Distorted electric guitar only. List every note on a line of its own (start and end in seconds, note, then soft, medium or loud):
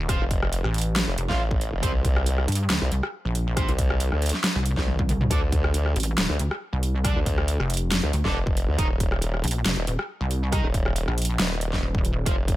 0.09 0.22 F4 medium
0.09 0.22 C5 medium
0.09 0.22 F5 medium
1.29 1.41 F4 medium
1.29 1.41 C5 medium
1.29 1.41 F5 loud
1.82 1.92 C4 medium
1.82 1.92 G4 medium
1.82 1.92 C5 medium
3.57 3.70 C4 medium
3.57 3.70 G4 medium
3.57 3.70 C5 medium
5.30 5.39 D4 medium
5.30 5.39 A4 medium
5.30 5.39 D5 medium
7.04 7.18 D4 medium
7.04 7.18 A4 medium
7.04 7.18 D5 medium
8.25 8.37 D4 medium
8.25 8.37 A4 medium
8.25 8.37 D5 medium
8.78 8.87 D#4 medium
8.78 8.87 A#4 medium
8.78 8.87 D#5 medium
10.52 10.66 D#4 medium
10.52 10.66 A#4 medium
10.52 10.66 D#5 medium
12.26 12.35 F4 medium
12.26 12.35 C5 medium
12.26 12.35 F5 medium